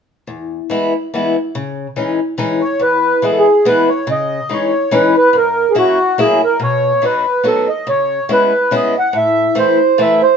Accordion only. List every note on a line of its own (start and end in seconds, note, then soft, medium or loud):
2.61 2.82 C#5 medium
2.82 3.25 B4 medium
3.24 3.31 G#4 medium
3.32 3.39 A4 soft
3.38 3.67 G#4 medium
3.67 3.90 B4 medium
3.89 4.09 C#5 medium
4.11 4.53 D#5 medium
4.53 4.95 C#5 medium
4.95 5.16 B4 medium
5.17 5.36 B4 loud
5.37 5.72 A#4 medium
5.70 5.76 G#4 medium
5.78 6.20 F#4 medium
6.20 6.42 G#4 medium
6.44 6.61 A#4 medium
6.63 7.05 C#5 medium
7.05 7.47 B4 medium
7.47 7.69 A4 medium
7.69 7.89 D#5 medium
7.89 8.32 C#5 medium
8.33 8.75 B4 medium
8.76 8.97 D#5 medium
8.99 9.17 F#5 medium
9.17 9.58 E5 medium
9.58 10.00 C5 medium
10.01 10.22 E5 medium
10.23 10.37 C5 medium